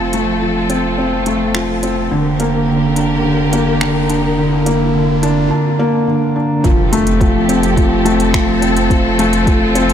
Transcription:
Already playing: sub bass F1, felt piano F3 A3 C4, string section F3 C4 F4 A4, riser
0.13 felt piano A3, closed hi-hat
0.42 felt piano F3
0.70 felt piano C4, closed hi-hat
0.98 felt piano C4
1.26 felt piano A3, closed hi-hat
1.55 felt piano F3, finger snap
1.83 felt piano C4, closed hi-hat
2.11 sub bass F1, string section D3 A#3 G4 A#4, felt piano D3
2.40 felt piano A#3, closed hi-hat
2.68 felt piano D3
2.96 felt piano D4, closed hi-hat
3.25 felt piano D3
3.53 felt piano A#3, closed hi-hat
3.81 felt piano D3, finger snap
4.10 felt piano D4, closed hi-hat
4.38 felt piano D3
4.66 felt piano A#3, closed hi-hat
4.95 felt piano D3
5.23 felt piano D4, closed hi-hat
5.51 felt piano D4
5.79 felt piano A#3
6.07 felt piano D3
6.36 felt piano D4
6.63 sub bass F1, string section F3 C4 G4 A4, felt piano F3, kick, closed hi-hat, impact
6.93 felt piano A3, closed hi-hat
7.07 closed hi-hat
7.20 felt piano F3, kick, closed hi-hat
7.49 felt piano C4, closed hi-hat
7.63 closed hi-hat
7.77 felt piano F3, kick, closed hi-hat
8.05 felt piano A3, closed hi-hat
8.20 closed hi-hat
8.34 felt piano F3, finger snap, kick, closed hi-hat
8.62 felt piano C4, closed hi-hat
8.77 closed hi-hat
8.90 felt piano F3, string section F4, kick, closed hi-hat
9.19 felt piano A3, closed hi-hat
9.33 closed hi-hat
9.47 felt piano F3, kick, closed hi-hat
9.75 felt piano C4, closed hi-hat
9.90 closed hi-hat

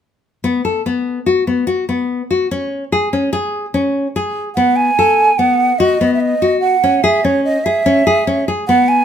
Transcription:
0.44 nylon-string guitar B3
0.65 nylon-string guitar A4
0.86 nylon-string guitar B3
1.26 nylon-string guitar F#4
1.47 nylon-string guitar B3
1.67 nylon-string guitar F#4
1.89 nylon-string guitar B3
2.31 nylon-string guitar F#4
2.51 nylon-string guitar C#4
2.92 nylon-string guitar G#4
3.13 nylon-string guitar C#4
3.33 nylon-string guitar G#4
3.74 nylon-string guitar C#4
4.16 nylon-string guitar G#4
4.55 nylon-string guitar B3, flute F#5
4.76 flute G#5
4.99 nylon-string guitar A4
5.38 nylon-string guitar B3, flute F#5
5.79 nylon-string guitar F#4, flute D#5
6.01 nylon-string guitar B3
6.14 flute E5
6.20 flute D#5
6.42 nylon-string guitar F#4
6.60 flute F#5
6.84 nylon-string guitar C#4
7.03 nylon-string guitar G#4, flute E5
7.25 nylon-string guitar C#4, flute C#5
7.44 flute D#5
7.64 nylon-string guitar G#4, flute E5
7.86 nylon-string guitar C#4
8.07 nylon-string guitar G#4
8.27 nylon-string guitar C#4
8.48 nylon-string guitar G#4
8.68 nylon-string guitar B3, flute F#5
8.88 flute G#5

